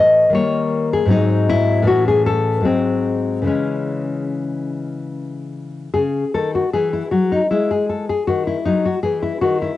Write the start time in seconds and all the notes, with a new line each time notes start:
Already playing: A2 E3 C#4 D#5
0.30 D#3 G3 A#3
0.35 C#5
0.93 G#4
1.05 G#2 F#3 C4
1.11 D#4
1.50 E4
1.82 A2 E3 C#4
1.87 F#4
2.08 G#4
2.26 A4
2.61 G#2 F#3 G#3
2.65 C4
3.42 C#3 E3 G#3
3.47 C#4
5.94 C#3 G#4
6.34 D#3 A4
6.55 F#4
6.73 E3 G#4
6.93 E4
7.11 F#3 F#4
7.32 D#4
7.51 G#3 E4
7.71 G#4
7.89 A4
8.09 G#4
8.27 D#3 F#4
8.47 E4
8.65 F#3 D#4
8.85 F#4
9.03 E3 G#4
9.23 E4
9.41 D#3 F#4
9.62 E4